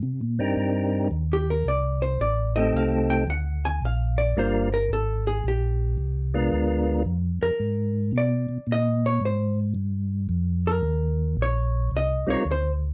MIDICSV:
0, 0, Header, 1, 4, 480
1, 0, Start_track
1, 0, Key_signature, -3, "major"
1, 0, Tempo, 540054
1, 30, Time_signature, 4, 2, 24, 8
1, 11498, End_track
2, 0, Start_track
2, 0, Title_t, "Hollow-body jazz guitar"
2, 0, Program_c, 0, 26
2, 1183, Note_on_c, 0, 67, 90
2, 1324, Note_off_c, 0, 67, 0
2, 1336, Note_on_c, 0, 70, 83
2, 1480, Note_off_c, 0, 70, 0
2, 1495, Note_on_c, 0, 74, 88
2, 1795, Note_off_c, 0, 74, 0
2, 1796, Note_on_c, 0, 72, 90
2, 1950, Note_off_c, 0, 72, 0
2, 1965, Note_on_c, 0, 74, 77
2, 2270, Note_off_c, 0, 74, 0
2, 2273, Note_on_c, 0, 75, 97
2, 2429, Note_off_c, 0, 75, 0
2, 2458, Note_on_c, 0, 77, 81
2, 2753, Note_off_c, 0, 77, 0
2, 2757, Note_on_c, 0, 79, 101
2, 2911, Note_off_c, 0, 79, 0
2, 2933, Note_on_c, 0, 78, 89
2, 3234, Note_off_c, 0, 78, 0
2, 3246, Note_on_c, 0, 80, 103
2, 3396, Note_off_c, 0, 80, 0
2, 3424, Note_on_c, 0, 77, 74
2, 3715, Note_on_c, 0, 74, 90
2, 3721, Note_off_c, 0, 77, 0
2, 3871, Note_off_c, 0, 74, 0
2, 3902, Note_on_c, 0, 72, 72
2, 4200, Note_off_c, 0, 72, 0
2, 4210, Note_on_c, 0, 70, 88
2, 4359, Note_off_c, 0, 70, 0
2, 4382, Note_on_c, 0, 69, 85
2, 4679, Note_off_c, 0, 69, 0
2, 4686, Note_on_c, 0, 68, 84
2, 4836, Note_off_c, 0, 68, 0
2, 4871, Note_on_c, 0, 67, 72
2, 5778, Note_off_c, 0, 67, 0
2, 6600, Note_on_c, 0, 70, 87
2, 7202, Note_off_c, 0, 70, 0
2, 7267, Note_on_c, 0, 74, 80
2, 7698, Note_off_c, 0, 74, 0
2, 7753, Note_on_c, 0, 75, 98
2, 8044, Note_off_c, 0, 75, 0
2, 8053, Note_on_c, 0, 73, 99
2, 8199, Note_off_c, 0, 73, 0
2, 8225, Note_on_c, 0, 72, 85
2, 8519, Note_off_c, 0, 72, 0
2, 9486, Note_on_c, 0, 70, 92
2, 10083, Note_off_c, 0, 70, 0
2, 10152, Note_on_c, 0, 73, 89
2, 10580, Note_off_c, 0, 73, 0
2, 10635, Note_on_c, 0, 75, 98
2, 10924, Note_off_c, 0, 75, 0
2, 10935, Note_on_c, 0, 73, 98
2, 11079, Note_off_c, 0, 73, 0
2, 11123, Note_on_c, 0, 72, 98
2, 11300, Note_off_c, 0, 72, 0
2, 11498, End_track
3, 0, Start_track
3, 0, Title_t, "Tonewheel organ"
3, 0, Program_c, 1, 16
3, 346, Note_on_c, 1, 60, 73
3, 350, Note_on_c, 1, 62, 68
3, 354, Note_on_c, 1, 63, 70
3, 358, Note_on_c, 1, 70, 86
3, 362, Note_on_c, 1, 67, 72
3, 958, Note_off_c, 1, 60, 0
3, 960, Note_off_c, 1, 62, 0
3, 962, Note_off_c, 1, 63, 0
3, 964, Note_off_c, 1, 70, 0
3, 966, Note_off_c, 1, 67, 0
3, 2274, Note_on_c, 1, 57, 82
3, 2277, Note_on_c, 1, 60, 71
3, 2277, Note_on_c, 1, 63, 67
3, 2282, Note_on_c, 1, 67, 72
3, 2288, Note_on_c, 1, 69, 88
3, 2883, Note_off_c, 1, 57, 0
3, 2884, Note_off_c, 1, 63, 0
3, 2885, Note_off_c, 1, 60, 0
3, 2887, Note_off_c, 1, 67, 0
3, 2890, Note_off_c, 1, 69, 0
3, 3880, Note_on_c, 1, 55, 74
3, 3885, Note_on_c, 1, 58, 69
3, 3887, Note_on_c, 1, 62, 67
3, 3892, Note_on_c, 1, 65, 69
3, 3896, Note_on_c, 1, 70, 86
3, 4166, Note_off_c, 1, 55, 0
3, 4168, Note_off_c, 1, 58, 0
3, 4169, Note_off_c, 1, 62, 0
3, 4172, Note_off_c, 1, 65, 0
3, 4174, Note_off_c, 1, 70, 0
3, 5635, Note_on_c, 1, 56, 76
3, 5638, Note_on_c, 1, 62, 69
3, 5640, Note_on_c, 1, 59, 69
3, 5641, Note_on_c, 1, 65, 70
3, 5646, Note_on_c, 1, 70, 87
3, 6243, Note_off_c, 1, 56, 0
3, 6245, Note_off_c, 1, 62, 0
3, 6246, Note_off_c, 1, 59, 0
3, 6246, Note_off_c, 1, 65, 0
3, 6249, Note_off_c, 1, 70, 0
3, 10902, Note_on_c, 1, 55, 85
3, 10908, Note_on_c, 1, 60, 75
3, 10908, Note_on_c, 1, 63, 78
3, 10917, Note_on_c, 1, 65, 78
3, 10921, Note_on_c, 1, 70, 96
3, 11051, Note_off_c, 1, 55, 0
3, 11054, Note_off_c, 1, 60, 0
3, 11054, Note_off_c, 1, 63, 0
3, 11059, Note_off_c, 1, 65, 0
3, 11060, Note_off_c, 1, 70, 0
3, 11498, End_track
4, 0, Start_track
4, 0, Title_t, "Tonewheel organ"
4, 0, Program_c, 2, 16
4, 23, Note_on_c, 2, 48, 93
4, 182, Note_off_c, 2, 48, 0
4, 189, Note_on_c, 2, 46, 59
4, 344, Note_on_c, 2, 43, 69
4, 350, Note_off_c, 2, 46, 0
4, 489, Note_off_c, 2, 43, 0
4, 499, Note_on_c, 2, 43, 95
4, 972, Note_off_c, 2, 43, 0
4, 986, Note_on_c, 2, 39, 96
4, 1455, Note_off_c, 2, 39, 0
4, 1466, Note_on_c, 2, 36, 92
4, 1936, Note_off_c, 2, 36, 0
4, 1947, Note_on_c, 2, 33, 88
4, 2416, Note_off_c, 2, 33, 0
4, 2430, Note_on_c, 2, 36, 95
4, 2898, Note_off_c, 2, 36, 0
4, 2911, Note_on_c, 2, 38, 89
4, 3379, Note_off_c, 2, 38, 0
4, 3396, Note_on_c, 2, 34, 96
4, 3862, Note_off_c, 2, 34, 0
4, 3875, Note_on_c, 2, 31, 94
4, 4341, Note_off_c, 2, 31, 0
4, 4351, Note_on_c, 2, 32, 90
4, 4819, Note_off_c, 2, 32, 0
4, 4832, Note_on_c, 2, 34, 89
4, 5300, Note_off_c, 2, 34, 0
4, 5311, Note_on_c, 2, 36, 95
4, 5779, Note_off_c, 2, 36, 0
4, 5797, Note_on_c, 2, 38, 86
4, 6262, Note_off_c, 2, 38, 0
4, 6271, Note_on_c, 2, 41, 98
4, 6570, Note_off_c, 2, 41, 0
4, 6592, Note_on_c, 2, 41, 44
4, 6673, Note_off_c, 2, 41, 0
4, 6750, Note_on_c, 2, 44, 91
4, 7218, Note_off_c, 2, 44, 0
4, 7222, Note_on_c, 2, 47, 101
4, 7525, Note_off_c, 2, 47, 0
4, 7542, Note_on_c, 2, 47, 41
4, 7625, Note_off_c, 2, 47, 0
4, 7703, Note_on_c, 2, 46, 94
4, 8173, Note_off_c, 2, 46, 0
4, 8183, Note_on_c, 2, 44, 99
4, 8653, Note_off_c, 2, 44, 0
4, 8662, Note_on_c, 2, 43, 100
4, 9132, Note_off_c, 2, 43, 0
4, 9145, Note_on_c, 2, 41, 104
4, 9613, Note_off_c, 2, 41, 0
4, 9622, Note_on_c, 2, 39, 100
4, 10092, Note_off_c, 2, 39, 0
4, 10103, Note_on_c, 2, 34, 94
4, 10573, Note_off_c, 2, 34, 0
4, 10588, Note_on_c, 2, 36, 95
4, 10887, Note_off_c, 2, 36, 0
4, 10908, Note_on_c, 2, 36, 41
4, 10989, Note_off_c, 2, 36, 0
4, 11066, Note_on_c, 2, 38, 100
4, 11498, Note_off_c, 2, 38, 0
4, 11498, End_track
0, 0, End_of_file